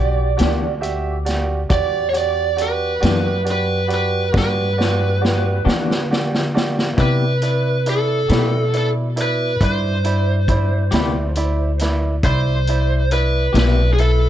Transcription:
Already playing: upright bass B1, grand piano F#4 G4 D5, lead electric guitar D5
0.37 upright bass D2, clean electric guitar E3 B3 D4 G4, grand piano F#4 G4 D5, closed hi-hat
0.41 snare
0.81 grand piano F#4 G4 E5, closed hi-hat
1.25 grand piano F#4 G4 D5, snare, closed hi-hat
1.69 upright bass E2, grand piano F#4 G4 D5, lead electric guitar D5, kick, closed hi-hat
2.09 grand piano F#4 G4, lead electric guitar C#5
2.14 grand piano D5, lead electric guitar D5, closed hi-hat
2.56 grand piano F#4 G4 D5, closed hi-hat
2.62 lead electric guitar B4
3.00 upright bass F#2, clean electric guitar E3 B3 D4 G4, grand piano F#4 G4 D5, closed hi-hat
3.05 snare
3.44 grand piano F#4 G4 D5, closed hi-hat
3.51 lead electric guitar B4
3.87 grand piano F#4 G4 D5, closed hi-hat
3.94 lead electric guitar B4
4.32 upright bass G2, grand piano F#4 G4 D5, kick
4.36 lead electric guitar B4, snare
4.78 grand piano F#4 G4 D5, snare
5.21 grand piano F#4 G4 D5, snare
5.65 upright bass D3, clean electric guitar E3 B3 D4 G4, grand piano F#4 G4 D5, snare
5.91 snare
6.10 grand piano F#4 G4 D5, snare
6.35 snare
6.54 grand piano F#4 G4 D5, snare
6.79 snare
6.97 clean electric guitar C3 B3 E4 G4, upright bass C3, grand piano E4 B4 D5, kick, closed hi-hat
7.01 lead electric guitar B4
7.42 grand piano E4 B4 D5, closed hi-hat
7.86 grand piano E4 B4 D5, lead electric guitar A4, closed hi-hat
8.28 upright bass B2, clean electric guitar C3 B3 E4 G4, grand piano E4 B4 D5, snare, closed hi-hat
8.73 grand piano E4 B4 D5, closed hi-hat
8.77 lead electric guitar A4
9.16 grand piano E4 B4 D5, closed hi-hat
9.22 lead electric guitar B4
9.61 upright bass G2, grand piano E4 D5 B5, lead electric guitar C5, kick, closed hi-hat
10.04 grand piano E4 D5 B5, closed hi-hat
10.48 grand piano E4 D5 B5, kick, closed hi-hat
10.91 upright bass D2, clean electric guitar C3 B3 E4 G4, grand piano E4 D5 B5, snare, closed hi-hat
11.35 grand piano E4 D5 B5, closed hi-hat
11.79 grand piano E4 B4 D5, snare, closed hi-hat
12.23 upright bass C2, grand piano E4 D5 B5, lead electric guitar C5, kick, closed hi-hat
12.67 grand piano E4 D5 B5, closed hi-hat
13.11 grand piano E4 B4 D5, lead electric guitar B4, closed hi-hat
13.53 upright bass B1, clean electric guitar C3 B3 E4 G4, grand piano E4 B4 D5, lead electric guitar B4, closed hi-hat
13.57 snare
13.93 lead electric guitar G#4
13.98 grand piano E4 B4 E5, lead electric guitar A4, closed hi-hat

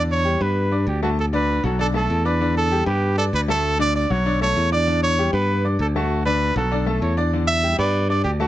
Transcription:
Already playing: picked electric bass E2, upright piano D3 D4 D5
0.11 trumpet C#5
0.25 upright piano G3 G4 G5
0.41 picked electric bass G2, upright piano B3 B4 B5, trumpet B4
0.71 upright piano D4 D5 D6
0.87 picked electric bass D2, trumpet G4
1.03 upright piano A3 A4 A5, trumpet F#4
1.19 trumpet A4
1.33 upright piano D3 D4 D5, trumpet B4
1.64 picked electric bass B1, upright piano F#3 F#4 F#5, trumpet A4
1.79 upright piano D3 D4 D5, trumpet A4
1.94 upright piano A3 A4 A5, trumpet A4
2.10 picked electric bass E2
2.25 upright piano D4 D5 D6, trumpet B4
2.40 upright piano D3 D4 D5
2.57 trumpet A4
2.71 upright piano G3 G4 G5
2.86 picked electric bass G2, upright piano B3 B4 B5, trumpet G4
3.18 upright piano D4 D5 D6, trumpet A4
3.33 picked electric bass D2, trumpet B4
3.48 upright piano A3 A4 A5, trumpet A4
3.79 upright piano D3 D4 D5, trumpet D5
3.95 trumpet D5
4.10 picked electric bass B1, upright piano F#3 F#4 F#5, trumpet C#5
4.26 upright piano D3 D4 D5
4.41 upright piano A3 A4 A5, trumpet C#5
4.57 picked electric bass E2
4.72 upright piano D4 D5 D6, trumpet D5
4.87 upright piano D3 D4 D5
5.03 trumpet C#5
5.19 upright piano G3 G4 G5
5.33 picked electric bass G2, upright piano B3 B4 B5, trumpet B4
5.65 upright piano D4 D5 D6
5.79 picked electric bass D2, trumpet A4
5.96 upright piano A3 A4 A5, trumpet F#4
6.25 upright piano D3 D4 D5, trumpet B4
6.56 picked electric bass B1, upright piano F#3 F#4 F#5, trumpet A4
6.71 upright piano D3 D4 D5
6.86 upright piano A3 A4 A5, trumpet A4
7.02 picked electric bass E2, trumpet C#5
7.17 upright piano D4 D5 D6
7.33 upright piano D3 D4 D5
7.47 trumpet E5
7.63 upright piano G3 G4 G5
7.79 picked electric bass G2, upright piano B3 B4 B5, trumpet D5
8.09 upright piano D4 D5 D6, trumpet D5
8.24 picked electric bass D2, trumpet G4
8.40 upright piano A3 A4 A5, trumpet F#4

